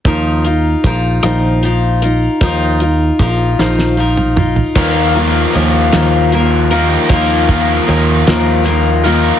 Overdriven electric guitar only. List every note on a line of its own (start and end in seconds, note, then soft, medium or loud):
4.76 6.69 D#3 medium
4.76 6.69 F3 medium
4.76 6.70 A#3 medium
4.76 6.70 D#4 medium
4.76 6.71 A#4 loud
6.72 7.09 D#3 medium
6.72 7.09 F3 medium
6.72 7.09 A#3 medium
6.72 7.09 D#4 medium
6.72 7.08 A#4 medium
7.10 9.03 D#3 medium
7.10 9.03 F3 medium
7.10 9.04 A#3 medium
7.10 9.04 D#4 medium
7.10 9.03 A#4 medium
9.04 9.39 D#3 medium
9.04 9.39 F3 medium
9.04 9.39 A#3 medium
9.04 9.39 D#4 medium
9.04 9.39 A#4 medium